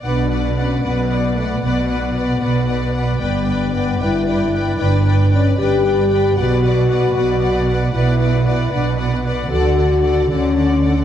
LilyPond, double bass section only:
\new Staff \with { instrumentName = "Double bass section" } { \clef bass \time 6/8 \key b \minor \tempo 4. = 76 b,,4. b,,4. | b,,4. b,,4. | g,,4. g,,4. | g,,4. g,,4. |
b,,4. b,,4. | b,,4. b,,4. | d,4. d,4. | }